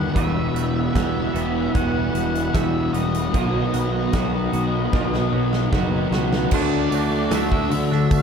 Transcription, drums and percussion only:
0.16 kick, closed hi-hat
0.56 closed hi-hat
0.96 kick, snare, closed hi-hat
1.35 closed hi-hat
1.75 kick, closed hi-hat
2.15 closed hi-hat
2.35 closed hi-hat
2.55 kick, snare, closed hi-hat
2.94 closed hi-hat
3.14 closed hi-hat
3.34 kick, closed hi-hat
3.74 closed hi-hat
4.13 kick, snare, closed hi-hat
4.53 closed hi-hat
4.93 kick, snare
5.14 snare
5.53 snare
5.73 kick, snare
6.13 snare
6.33 snare
6.51 kick, crash, tambourine
6.92 open hi-hat, tambourine
7.31 snare, open hi-hat, tambourine
7.52 kick
7.71 open hi-hat, tambourine
7.92 snare
8.11 kick, open hi-hat, tambourine

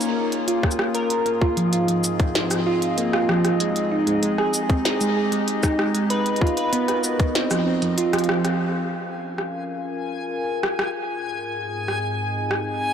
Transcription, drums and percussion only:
0.01 closed hi-hat, cabasa
0.32 closed hi-hat
0.48 closed hi-hat
0.63 kick, cross-stick
0.71 cabasa
0.79 cross-stick
0.95 closed hi-hat
1.10 closed hi-hat
1.26 closed hi-hat
1.42 kick
1.57 closed hi-hat
1.73 closed hi-hat
1.88 closed hi-hat
2.04 cabasa
2.20 kick, closed hi-hat
2.35 snare, closed hi-hat
2.51 cross-stick, closed hi-hat, cabasa
2.82 closed hi-hat
2.98 closed hi-hat
3.13 cross-stick
3.29 cross-stick
3.45 cross-stick, closed hi-hat
3.60 closed hi-hat
3.76 closed hi-hat
4.07 closed hi-hat
4.23 closed hi-hat
4.38 cross-stick
4.54 cabasa
4.70 kick, closed hi-hat
4.85 snare, closed hi-hat
5.01 closed hi-hat, cabasa
5.32 closed hi-hat
5.48 closed hi-hat
5.63 kick, cross-stick, cabasa
5.79 cross-stick
5.95 closed hi-hat
6.10 closed hi-hat
6.26 closed hi-hat
6.36 closed hi-hat
6.41 kick
6.47 closed hi-hat
6.57 closed hi-hat
6.73 closed hi-hat
6.88 cross-stick, closed hi-hat
7.04 cabasa
7.20 kick, closed hi-hat
7.35 snare, closed hi-hat
7.51 cross-stick, closed hi-hat, cabasa
7.82 closed hi-hat
7.98 closed hi-hat
8.13 cross-stick, closed hi-hat
8.19 closed hi-hat
8.24 closed hi-hat
8.29 cross-stick
8.45 cross-stick, closed hi-hat
9.38 cross-stick
10.63 cross-stick
10.79 cross-stick
11.88 cross-stick
12.51 cross-stick

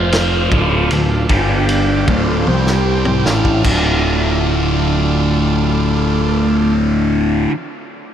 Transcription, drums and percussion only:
0.12 snare, ride
0.52 kick, ride
0.91 ride
1.29 kick, ride
1.69 ride
2.08 kick, ride
2.47 high tom
2.67 snare
3.05 mid tom
3.26 snare
3.45 kick
3.64 kick, crash

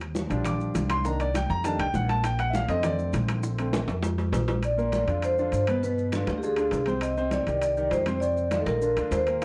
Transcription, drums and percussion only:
0.01 high bongo, high conga, high timbale, maracas
0.15 high bongo, high conga, maracas
0.30 high conga, high timbale, maracas
0.45 high bongo, high conga, low conga, high timbale, maracas
0.59 high bongo, high conga, maracas
0.75 high bongo, low bongo, high conga, high timbale, maracas
0.90 high bongo, high conga, high timbale, maracas
1.05 high bongo, high conga, maracas
1.19 high bongo, high conga, high timbale, maracas
1.34 high bongo, high conga, high timbale, maracas
1.50 high conga, maracas
1.64 high bongo, high conga, high timbale, maracas
1.79 high bongo, high conga, high timbale, maracas
1.94 high bongo, low bongo, high conga, maracas
2.09 high bongo, high conga, high timbale, maracas
2.24 high bongo, high conga, high timbale, maracas
2.38 high bongo, high conga, high timbale, maracas
2.53 high bongo, high conga, maracas
2.69 high conga, high timbale, maracas
2.83 high bongo, high conga, low conga, high timbale, maracas
2.99 high bongo, high conga, maracas
3.13 high bongo, low bongo, high conga, high timbale, maracas
3.28 high bongo, high conga, high timbale, maracas
3.43 high bongo, high conga, maracas
3.58 high bongo, high conga, high timbale, maracas
3.73 high bongo, high conga, high timbale, maracas
3.88 high conga, high timbale, maracas
4.03 high bongo, high conga, low timbale, maracas
4.18 high bongo, high conga, low timbale, maracas
4.33 high bongo, low bongo, high conga, low timbale, maracas
4.48 high bongo, high conga, low timbale, maracas
4.63 high conga, high timbale, maracas
4.79 high conga, maracas
4.92 high conga, high timbale, maracas
5.08 high conga, high timbale, maracas
5.22 high conga, high timbale, maracas
5.38 high conga, maracas
5.52 high conga, high timbale, maracas
5.67 high conga, high timbale, maracas
5.83 high conga, maracas
5.98 high conga, maracas
6.12 high conga, high timbale, maracas
6.27 high conga, high timbale, maracas
6.43 high conga, maracas
6.57 high conga, high timbale, maracas
6.71 high conga, high timbale, low timbale, maracas
6.86 high conga, high timbale, maracas
7.01 high conga, high timbale, maracas
7.17 high conga, maracas
7.31 high conga, high timbale, maracas
7.46 high conga, high timbale, maracas
7.61 high conga, high timbale, maracas
7.77 high conga, maracas
7.91 high conga, high timbale, low timbale, maracas
8.06 high conga, high timbale, maracas
8.22 high conga, maracas
8.37 high conga, maracas
8.51 high conga, high timbale, maracas
8.67 high conga, high timbale, maracas
8.82 high conga, maracas
8.97 high conga, high timbale, maracas
9.12 high conga, high timbale, low timbale, maracas
9.27 high timbale, maracas

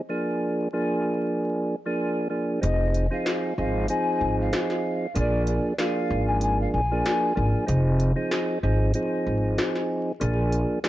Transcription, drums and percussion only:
2.63 closed hi-hat
2.94 closed hi-hat
3.26 snare, closed hi-hat
3.88 closed hi-hat
4.53 snare, closed hi-hat
4.70 snare
5.16 closed hi-hat
5.47 closed hi-hat
5.79 snare, closed hi-hat
6.41 closed hi-hat
7.06 snare, closed hi-hat
7.68 closed hi-hat
8.00 closed hi-hat
8.31 snare, closed hi-hat
8.94 closed hi-hat
9.58 snare, closed hi-hat
9.75 snare
10.21 closed hi-hat
10.52 closed hi-hat
10.84 snare, closed hi-hat

